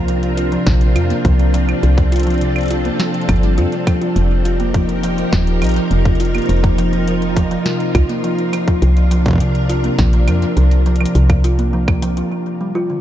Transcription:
Already playing: C2 C3 C4 D4 F4 A#4
0.08 F3, closed hi-hat
0.23 closed hi-hat
0.37 F4, closed hi-hat
0.52 F3, closed hi-hat
0.66 A#1 C3, kick, snare, closed hi-hat
0.81 closed hi-hat
0.96 F2 F4, closed hi-hat, claves
1.10 A#3, closed hi-hat
1.25 C2 F3, kick, closed hi-hat
1.39 F3, closed hi-hat
1.54 F3 A4, closed hi-hat
1.69 F3, closed hi-hat, claves
1.83 C2 F3, closed hi-hat
1.98 kick, closed hi-hat
2.12 F4, closed hi-hat
2.16 closed hi-hat
2.20 closed hi-hat
2.23 F3, closed hi-hat
2.27 closed hi-hat
2.30 closed hi-hat
2.34 closed hi-hat
2.38 C3, closed hi-hat
2.41 closed hi-hat
2.56 closed hi-hat, claves
2.58 closed hi-hat
2.61 closed hi-hat
2.63 closed hi-hat
2.66 closed hi-hat
2.68 F4, closed hi-hat
2.71 closed hi-hat
2.85 A#3, closed hi-hat
3.00 F3, snare, closed hi-hat
3.14 F3, closed hi-hat
3.21 closed hi-hat
3.29 G1 F3, kick, closed hi-hat, claves
3.36 closed hi-hat
3.43 G3, closed hi-hat
3.58 F2 F4, closed hi-hat
3.72 closed hi-hat
3.87 F3, kick, closed hi-hat, claves
4.01 F4, closed hi-hat
4.16 F1 C3 F3 D#4 G4 A#4, closed hi-hat
4.45 F4, closed hi-hat
4.60 A#3, closed hi-hat
4.74 F3, kick, closed hi-hat
4.89 F3, closed hi-hat
5.03 F3, closed hi-hat
5.18 F3, closed hi-hat
5.33 D#1 F3, kick, snare, closed hi-hat
5.47 closed hi-hat
5.62 A#1 F3, closed hi-hat, claves
5.64 closed hi-hat
5.67 closed hi-hat
5.69 closed hi-hat
5.71 closed hi-hat
5.74 F3, closed hi-hat
5.76 closed hi-hat
5.91 F1 C3, closed hi-hat
6.05 kick, closed hi-hat
6.15 closed hi-hat
6.20 F4, closed hi-hat
6.25 closed hi-hat
6.35 A#3, closed hi-hat, claves
6.38 closed hi-hat
6.42 closed hi-hat
6.46 F1 F3, closed hi-hat
6.49 F4, closed hi-hat
6.57 closed hi-hat
6.60 F3, kick, closed hi-hat
6.64 closed hi-hat
6.78 F3, closed hi-hat
6.93 F3, closed hi-hat
7.07 F3, closed hi-hat
7.22 closed hi-hat
7.37 F3, kick, closed hi-hat
7.51 F3, closed hi-hat
7.66 C3, snare, closed hi-hat
7.80 closed hi-hat
7.95 C2 F4, kick, closed hi-hat, claves
8.09 A#3, closed hi-hat
8.24 F3, closed hi-hat
8.38 F3, closed hi-hat
8.53 C3 F3 D4 A#4, closed hi-hat, claves
8.68 F3, kick, closed hi-hat
8.82 C2 F3, closed hi-hat
8.97 closed hi-hat
9.11 F3, closed hi-hat
9.26 F3, kick, closed hi-hat
9.28 kick
9.31 kick
9.33 kick
9.36 kick
9.38 C3, kick, closed hi-hat
9.55 closed hi-hat
9.69 F4, closed hi-hat
9.84 A#3, closed hi-hat
9.99 A#1 F3, kick, snare, closed hi-hat
10.13 F3, closed hi-hat
10.28 F2 F3, closed hi-hat, claves
10.42 F3, closed hi-hat
10.57 C2 F3, closed hi-hat
10.71 closed hi-hat
10.86 F3, closed hi-hat
10.96 closed hi-hat
11.01 F3, claves
11.05 closed hi-hat
11.15 C2 C3, closed hi-hat
11.30 kick, closed hi-hat, claves
11.44 F4, closed hi-hat
11.59 A#3, closed hi-hat
11.73 F3
11.88 F3, kick, claves
12.02 F3, closed hi-hat
12.17 F3, closed hi-hat
12.31 F3
12.61 G3
12.75 F4
12.90 D3

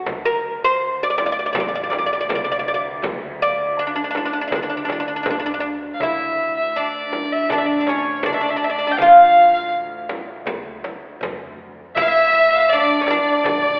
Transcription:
Already playing: F#4
0.06 D2, frame drum, darbuka dum
0.25 A#4
0.44 darbuka ka
0.64 C5
1.03 D5
1.10 D5
1.18 D5, darbuka tek, frame drum
1.26 D5
1.32 D5
1.39 D5
1.46 D5
1.53 A1 D5, darbuka dum, frame drum
1.60 D5
1.68 D5
1.75 D5
1.83 D5
1.90 D5, darbuka tek, frame drum
1.99 D5
2.06 D5
2.13 D5
2.21 D5
2.29 C2 D5, darbuka dum, frame drum
2.35 D5
2.44 D5
2.48 D5, darbuka ka
2.59 D5
2.68 D5
2.74 D5
3.02 D2, darbuka dum, frame drum
3.40 D5, darbuka ka
3.58 darbuka ka
3.79 D4
3.87 D4
3.96 D4
4.04 D4
4.11 D4
4.15 D4, darbuka tek, frame drum
4.25 D4
4.33 D4, darbuka ka
4.41 D4
4.48 D4, darbuka dum
4.52 D3 D4, frame drum
4.63 D4
4.70 D4
4.77 D4
4.85 D4, darbuka tek
4.90 D4, frame drum
5.00 D4
5.08 D4
5.16 D4
5.23 D2 D4, frame drum, darbuka dum
5.30 D4
5.39 D4
5.46 D4, darbuka ka
5.54 D4
5.60 D4, darbuka ka
5.82 darbuka ka
5.94 F5
6.00 D2 E4 E5, darbuka dum, frame drum
6.39 darbuka ka
6.57 E5
6.76 D4 D5, darbuka ka
7.13 darbuka tek, frame drum
7.32 E5, darbuka ka
7.49 A1 D4 D5, darbuka dum, frame drum
7.58 E5
7.66 D5
7.81 D4
7.87 C#4 C#5, darbuka tek, frame drum
8.23 D3 D4 D5, frame drum, darbuka dum
8.33 D4 E5
8.41 D4 D5, darbuka ka
8.49 D4 E5
8.56 D4 D5
8.62 D4 E5, darbuka ka
8.70 D4 D5
8.78 D4
8.87 D4
8.92 G5
8.97 A1 F5, frame drum, darbuka dum
9.02 F4
9.36 darbuka ka
9.53 F5
9.73 darbuka ka
10.09 darbuka tek, frame drum
10.28 darbuka ka
10.46 D2, darbuka dum, frame drum
10.84 darbuka tek, frame drum
11.21 F2, darbuka dum, frame drum
11.40 darbuka ka
11.59 darbuka ka
11.95 D2 E4 E5, darbuka dum, frame drum
12.02 F5
12.08 E5
12.33 darbuka ka
12.51 E5 F5
12.60 E5
12.69 D4 D5, darbuka ka
13.01 C#4
13.05 D5, darbuka tek, frame drum
13.11 D4
13.26 darbuka ka
13.44 A1, darbuka dum, frame drum

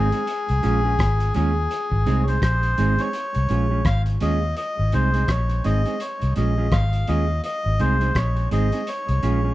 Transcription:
Already playing: G#1 G#4
0.12 G#3 C4 D#4 G#4, closed hi-hat
0.27 closed hi-hat
0.49 C2, closed hi-hat
0.63 A#1 G#3 C#4 F4 G#4, closed hi-hat
0.84 G#3 C#4 F4 G#4
0.99 G#1, kick, cross-stick, closed hi-hat
1.20 closed hi-hat
1.34 D#2 G#3 C#4 F4 G#4, closed hi-hat
1.71 closed hi-hat
1.92 G#1, kick
2.06 C2 G#3 C4 D#4 G#4, closed hi-hat
2.24 G#4 C#5
2.28 G#3 C4 D#4 C5, closed hi-hat
2.42 A#1 C5, kick, cross-stick, closed hi-hat
2.63 closed hi-hat
2.78 G#1 G#3 C4 D#4 G#4, closed hi-hat
2.99 G#3 C4 D#4 G#4 C#5, closed hi-hat
3.13 closed hi-hat
3.35 C2, closed hi-hat
3.49 A#1 G#3 C#4 F4 G#4, closed hi-hat
3.71 G#3 C#4 F4 G#4
3.85 G#1 F5, kick, cross-stick, closed hi-hat
4.06 closed hi-hat
4.20 D#2 G#3 C#4 F4 G#4 D#5, closed hi-hat
4.57 D#5, closed hi-hat
4.79 G#1
4.92 C2 G#3 C4 D#4 G#4 C5, closed hi-hat
5.14 G#3 C4 D#4 G#4, closed hi-hat
5.28 A#1 C#5, kick, cross-stick, closed hi-hat
5.50 closed hi-hat
5.64 G#1 G#3 C4 D#4 G#4 D#5, closed hi-hat
5.86 G#3 C4 D#4 G#4, closed hi-hat
6.00 C#5, closed hi-hat
6.22 C2, closed hi-hat
6.36 A#1 G#3 C#4 F4 G#4 D#5, closed hi-hat
6.58 G#3 C#4 F4 G#4
6.72 G#1 F5, kick, cross-stick, closed hi-hat
6.93 closed hi-hat
7.07 D#2 G#3 C#4 F4 G#4 D#5, closed hi-hat
7.44 D#5, closed hi-hat
7.66 G#1
7.80 C2 G#3 C4 D#4 G#4 C5, closed hi-hat
8.01 G#3 C4 D#4 G#4, closed hi-hat
8.15 A#1 C#5, kick, cross-stick, closed hi-hat
8.37 closed hi-hat
8.51 G#1 G#3 C4 D#4 G#4 D#5, closed hi-hat
8.72 G#3 C4 D#4 G#4, closed hi-hat
8.87 C#5, closed hi-hat
9.09 C2, closed hi-hat
9.23 A#1 G#3 C#4 F4 G#4, closed hi-hat
9.44 G#3 C#4 F4 G#4

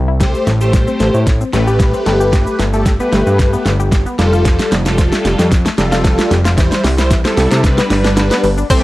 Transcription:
Already playing: C2
0.08 E4
0.20 G3 A3 G4 C5, kick, snare, closed hi-hat, shaker
0.34 shaker
0.47 A1 A3, snare, closed hi-hat, shaker
0.61 A3 G4 C5, shaker
0.73 G3, kick, snare, closed hi-hat, shaker
0.88 C4, shaker
1.00 A1 A3, snare, closed hi-hat, shaker
1.14 A2, shaker
1.27 kick, snare, closed hi-hat, shaker
1.41 C4, shaker
1.53 A1 A3 G4 B4, snare, closed hi-hat, shaker
1.67 G4, shaker
1.80 G3, kick, snare, closed hi-hat, shaker
1.94 C4, shaker
2.06 G1 A3 G4 B4, snare, closed hi-hat, shaker
2.20 G4, shaker
2.33 G3, kick, snare, closed hi-hat, shaker
2.47 shaker
2.59 G1 A3, snare, closed hi-hat, shaker
2.73 A3 G4 A4, shaker
2.86 G3, kick, snare, closed hi-hat, shaker
3.00 A3 B3 G4 B4, shaker
3.13 G1 A3, snare, closed hi-hat, shaker
3.27 G2, shaker
3.39 kick, snare, closed hi-hat, shaker
3.53 B3, shaker
3.66 G1 A3, snare, closed hi-hat, shaker
3.80 G4, shaker
3.92 G3, kick, snare, closed hi-hat, shaker
4.06 B3, shaker
4.18 F1 G3 F4 A4, snare, closed hi-hat, shaker
4.33 F4, shaker
4.45 F3, kick, snare, closed hi-hat, shaker
4.59 snare, shaker
4.72 F1 G3, snare, closed hi-hat, shaker
4.86 G3 F4 A4, snare, shaker
4.98 F3, kick, snare, closed hi-hat, shaker
5.12 A3, snare, shaker
5.25 F1 G3, snare, closed hi-hat, shaker
5.39 F2, snare, shaker
5.52 kick, snare, closed hi-hat, shaker
5.66 A3, snare, shaker
5.78 F1 G3 F4 A4, snare, closed hi-hat, shaker
5.92 F4, snare, shaker
6.04 F3, kick, snare, closed hi-hat, shaker
6.19 A3, snare, shaker
6.31 F1 G3, snare, closed hi-hat, shaker
6.45 F4, snare, shaker
6.57 E3 G3 E4 C5, kick, snare, closed hi-hat, shaker
6.72 snare, shaker
6.84 C2 G3, snare, open hi-hat, shaker
6.98 G3 E4 C5, snare, shaker
7.11 E3, kick, snare, closed hi-hat, shaker
7.25 G3 C4 E4 A4, snare, shaker
7.37 C2 G3, snare, open hi-hat, shaker
7.51 C3, snare, shaker
7.64 G3 D4 B4, kick, snare, closed hi-hat, shaker
7.78 B3, snare, shaker
7.90 G1 G3, snare, open hi-hat, shaker
8.04 D4, snare, shaker
8.17 D3, snare, closed hi-hat, shaker
8.31 B3, snare, shaker
8.43 G1 G3, open hi-hat, shaker
8.58 D4, shaker
8.70 E3 G3 A3 C4 E4 G4 A4 C5, kick, closed hi-hat, crash, shaker

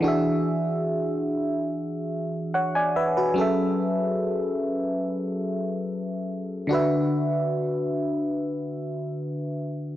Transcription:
0.01 E3 D4 F#4
0.06 G#4 E5
2.54 C#5 F#5
2.75 D5 G#5
2.96 B4 E5
3.17 F#4 B4
3.34 F#3 C#4 G#4
3.39 A4 E5
6.67 D3 D4 F#4
6.73 B4 E5

